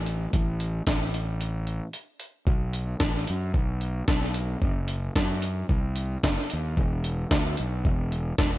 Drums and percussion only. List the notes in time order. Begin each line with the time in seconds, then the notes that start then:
0.06 closed hi-hat
0.33 kick, closed hi-hat
0.60 closed hi-hat
0.87 kick, snare, closed hi-hat
1.14 closed hi-hat
1.41 closed hi-hat
1.67 closed hi-hat
1.93 closed hi-hat
2.20 closed hi-hat
2.47 kick
2.73 closed hi-hat
3.00 kick, snare
3.15 snare
3.27 closed hi-hat
3.54 kick
3.81 closed hi-hat
4.08 kick, snare
4.22 snare
4.34 closed hi-hat
4.62 kick
4.88 closed hi-hat
5.16 kick, snare
5.42 closed hi-hat
5.69 kick
5.96 closed hi-hat
6.24 kick, snare
6.38 snare
6.50 closed hi-hat
6.77 kick
7.04 closed hi-hat
7.31 kick, snare
7.57 closed hi-hat
7.85 kick
8.12 closed hi-hat
8.38 kick, snare